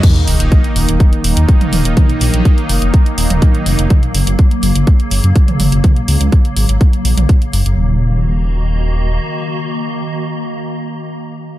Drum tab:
CC |x---------------|----------------|----------------|----------------|
HH |xxoxxxoxxxoxxxox|xxoxxxoxxxoxxxox|xxoxxxoxxxoxxxox|xxoxxxoxxxoxxxox|
T2 |o------------oo-|o----------o----|o------------oo-|o----------o----|
BD |o---o---o---o---|o---o---o---o---|o---o---o---o---|o---o---o---o---|

CC |----------------|----------------|
HH |----------------|----------------|
T2 |----------------|----------------|
BD |----------------|----------------|